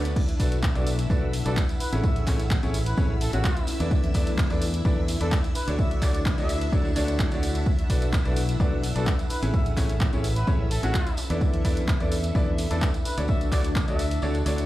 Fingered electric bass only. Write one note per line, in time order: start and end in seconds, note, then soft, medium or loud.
0.00 0.13 D2 medium
0.40 0.73 B1 loud
0.75 1.08 B1 loud
1.10 1.43 B1 loud
1.46 1.56 B1 loud
1.93 2.25 A1 loud
2.27 2.60 A1 loud
2.63 2.95 A1 loud
2.98 3.31 A1 loud
3.33 3.43 A1 loud
3.80 4.12 E2 loud
4.15 4.48 E2 loud
4.50 4.83 E2 loud
4.85 5.18 E2 loud
5.21 5.31 E2 loud
5.68 6.00 D2 loud
6.02 6.35 D2 loud
6.38 6.70 D2 loud
6.73 6.94 D2 loud
6.96 7.29 D2 loud
7.32 7.63 D2 loud
7.90 8.23 B1 loud
8.25 8.58 B1 loud
8.60 8.93 B1 loud
8.96 9.06 B1 loud
9.42 9.75 A1 loud
9.77 10.10 A1 loud
10.13 10.45 A1 loud
10.47 10.81 A1 loud
10.83 10.93 A1 loud
11.30 11.62 E2 loud
11.65 11.98 E2 loud
12.00 12.33 E2 loud
12.35 12.68 E2 loud
12.71 12.81 E2 loud
13.18 13.50 D2 loud
13.52 13.85 D2 loud
13.88 14.20 D2 loud
14.23 14.44 D2 loud
14.46 14.66 D2 loud